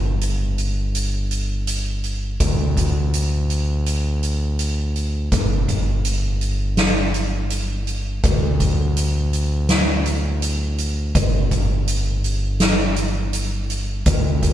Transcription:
0.00 2.36 G1 medium
0.21 closed hi-hat medium
0.58 closed hi-hat soft
0.95 closed hi-hat medium
1.31 closed hi-hat medium
1.67 closed hi-hat medium
2.04 closed hi-hat soft
2.40 5.28 D2 medium
2.40 kick medium
2.40 closed hi-hat medium
2.77 kick medium
2.77 closed hi-hat medium
3.14 closed hi-hat medium
3.50 closed hi-hat soft
3.86 closed hi-hat medium
4.23 closed hi-hat soft
4.59 closed hi-hat medium
4.96 closed hi-hat soft
5.32 8.20 G1 medium
5.32 kick medium
5.32 closed hi-hat medium
5.68 kick medium
5.68 closed hi-hat soft
6.05 closed hi-hat medium
6.41 closed hi-hat soft
6.77 snare medium
6.77 closed hi-hat medium
7.14 closed hi-hat soft
7.50 closed hi-hat medium
7.87 closed hi-hat soft
8.23 11.11 D2 medium
8.23 kick medium
8.23 closed hi-hat medium
8.60 kick medium
8.60 closed hi-hat soft
8.97 closed hi-hat medium
9.33 closed hi-hat soft
9.69 snare medium
9.69 closed hi-hat medium
10.06 closed hi-hat soft
10.42 closed hi-hat medium
10.78 closed hi-hat soft
11.15 14.02 G1 medium
11.15 kick medium
11.15 closed hi-hat medium
11.51 kick medium
11.51 closed hi-hat soft
11.88 closed hi-hat medium
12.24 closed hi-hat soft
12.60 snare medium
12.60 closed hi-hat medium
12.96 closed hi-hat soft
13.33 closed hi-hat medium
13.70 closed hi-hat soft
14.06 14.53 D2 medium
14.06 kick medium
14.06 closed hi-hat medium
14.43 kick medium
14.43 closed hi-hat medium

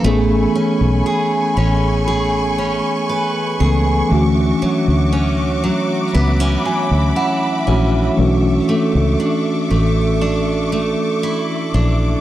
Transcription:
0.00 3.56 E3 medium
0.00 3.56 A3 medium
0.00 0.15 A4 medium
0.04 0.45 A1 loud
0.04 4.07 A3 medium
0.04 4.11 A3 medium
0.04 3.57 B3 medium
0.04 3.57 C#4 medium
0.04 3.58 G#4 medium
0.04 4.07 G#5 medium
0.04 4.07 B5 medium
0.04 6.10 C#6 medium
0.55 1.56 C#4 medium
0.81 1.01 B1 medium
1.06 2.06 G#4 medium
1.57 2.80 A1 medium
1.57 2.58 C#4 medium
2.08 3.59 G#4 medium
2.58 5.12 C#4 medium
3.09 4.21 B4 medium
3.60 4.01 C#2 medium
3.60 4.09 E3 medium
3.60 4.09 A3 soft
3.60 4.11 B3 soft
3.60 4.10 C#4 soft
3.60 4.21 G#4 medium
3.60 4.12 A4 medium
4.10 4.52 D2 loud
4.10 7.62 E3 medium
4.10 7.63 A3 medium
4.10 7.63 C#4 medium
4.10 7.64 D4 medium
4.10 8.14 F#4 medium
4.10 7.64 F#4 medium
4.10 12.21 E5 medium
4.10 8.14 D6 medium
4.62 5.63 F#3 medium
4.62 muted fingered electric bass stroke soft
4.88 5.69 D2 medium
5.13 6.14 C#4 medium
5.64 6.65 F#3 medium
6.14 6.56 C#2 medium
6.14 6.40 B3 medium
6.14 8.16 B5 medium
6.40 7.66 C#4 medium
6.65 8.68 F#3 medium
6.65 7.13 G#5 medium
6.91 7.11 D2 medium
7.16 9.23 E4 medium
7.16 7.64 F#5 medium
7.67 8.08 A#1 medium
7.67 8.16 E3 medium
7.67 8.17 A3 soft
7.67 9.19 C#4 medium
7.67 8.17 C#4 soft
7.67 8.19 D4 soft
7.67 8.19 F#4 medium
7.67 8.15 E5 medium
8.17 8.59 B1 loud
8.17 12.20 E3 medium
8.17 12.21 A3 medium
8.17 12.21 C#4 medium
8.17 12.21 D4 medium
8.17 12.21 F#4 medium
8.17 12.21 A4 medium
8.17 12.21 C#6 medium
8.17 12.21 D6 medium
8.69 9.70 A3 medium
8.95 9.15 C#2 medium
9.20 10.21 D4 medium
9.71 10.94 A1 medium
9.71 10.72 A3 medium
10.21 11.74 D4 medium
10.72 12.21 A3 medium
11.23 12.21 E4 medium
11.74 12.15 A#1 medium
11.74 12.21 D4 medium

